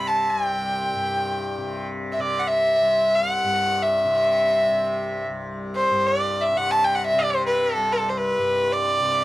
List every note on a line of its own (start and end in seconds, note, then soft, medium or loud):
0.00 0.31 C2 medium
0.00 0.94 G2 medium
0.00 1.58 C3 medium
0.07 0.31 A5 medium
0.29 2.81 C2 medium
0.29 0.44 G#5 medium
0.44 1.83 G5 medium
0.94 3.43 G2 soft
1.58 2.18 C3 medium
2.12 2.22 E5 medium
2.18 4.05 C3 medium
2.18 2.41 D5 medium
2.39 2.49 F#5 medium
2.48 3.16 E5 medium
2.81 5.29 C2 medium
3.15 3.84 F#5 medium
3.43 5.90 G2 medium
3.83 5.23 E5 medium
4.05 4.67 C3 medium
4.67 6.54 C3 medium
5.29 7.77 C2 medium
5.75 6.08 C5 medium
5.91 8.37 G2 medium
6.06 6.43 D5 medium
6.41 6.58 E5 medium
6.54 7.14 C3 medium
6.54 6.72 F#5 medium
6.71 6.86 A5 medium
6.84 6.96 G5 medium
6.95 7.05 F#5 medium
7.06 7.20 E5 medium
7.14 9.01 C3 medium
7.19 7.32 D5 medium
7.30 7.44 C5 medium
7.46 7.73 B4 medium
7.73 7.92 A4 medium
7.77 9.24 C2 medium
7.92 8.11 A4 medium
8.09 8.19 C5 medium
8.17 8.74 B4 medium
8.38 9.24 G2 medium
8.72 9.24 D5 medium
9.01 9.24 C3 medium